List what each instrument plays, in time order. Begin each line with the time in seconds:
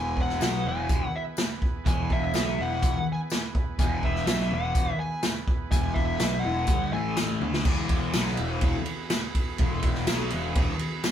Already playing: picked electric bass E1, distorted electric guitar E2 B2 E3, transistor combo organ E3 B3 G#4 B4, lead electric guitar G#5
0.17 kick
0.21 lead electric guitar F#5
0.29 snare
0.41 picked electric bass B1, distorted electric guitar B2 F#3 B3, snare, closed hi-hat, tambourine
0.65 picked electric bass E1, distorted electric guitar E2 B2 E3, lead electric guitar G#5
0.89 kick, closed hi-hat
1.16 lead electric guitar E5
1.37 snare, closed hi-hat, tambourine
1.62 kick
1.85 picked electric bass E1, distorted electric guitar E2 B2 E3, lead electric guitar G#5, kick, closed hi-hat
2.10 lead electric guitar E5, kick
2.34 picked electric bass B1, distorted electric guitar B2 F#3 B3, snare, closed hi-hat, tambourine
2.58 picked electric bass E1, distorted electric guitar E2 B2 E3, lead electric guitar F#5
2.83 kick, closed hi-hat
3.13 lead electric guitar G#5
3.30 snare, closed hi-hat, tambourine
3.55 kick
3.78 picked electric bass E1, distorted electric guitar E2 B2 E3, lead electric guitar G#5, kick, closed hi-hat
4.03 lead electric guitar E5, kick
4.16 snare
4.27 picked electric bass B1, distorted electric guitar B2 F#3 B3, snare, closed hi-hat, tambourine
4.40 snare
4.51 picked electric bass E1, distorted electric guitar E2 B2 E3, lead electric guitar F#5
4.75 kick, closed hi-hat
5.00 lead electric guitar G#5
5.23 snare, closed hi-hat, tambourine
5.47 kick
5.71 picked electric bass E1, distorted electric guitar E2 B2 E3, lead electric guitar G#5, kick, closed hi-hat
5.94 lead electric guitar E5, kick
6.19 picked electric bass B1, distorted electric guitar B2 F#3 B3, snare, closed hi-hat, tambourine
6.40 lead electric guitar F#5
6.44 picked electric bass E1, distorted electric guitar E2 B2 E3
6.67 picked electric bass G1, distorted electric guitar G2 D3 G3, kick, closed hi-hat
6.92 picked electric bass A1, distorted electric guitar A2 E3 A3, transistor combo organ E3 A3 A4 E5, lead electric guitar G#5
7.17 snare, closed hi-hat, tambourine
7.39 picked electric bass D2, distorted electric guitar D3 A3 D4, transistor combo organ B3 G#4 B4, high tom
7.54 snare
7.65 picked electric bass E1, distorted electric guitar E2 B2 E3, transistor combo organ E3 B3 G#4 B4, kick, crash
7.89 kick, ride
8.13 picked electric bass B1, distorted electric guitar B2 F#3 B3, snare, ride, tambourine
8.26 snare
8.37 picked electric bass E1, distorted electric guitar E2 B2 E3, ride
8.61 kick, ride
8.86 ride
9.10 snare, ride, tambourine
9.35 kick, ride
9.58 picked electric bass E1, distorted electric guitar E2 B2 E3, kick, ride
9.83 kick, ride
9.95 snare
10.07 picked electric bass B1, distorted electric guitar B2 F#3 B3, snare, ride, tambourine
10.30 picked electric bass E1, distorted electric guitar E2 B2 E3, ride
10.55 kick, ride
10.79 ride
11.04 snare, ride, tambourine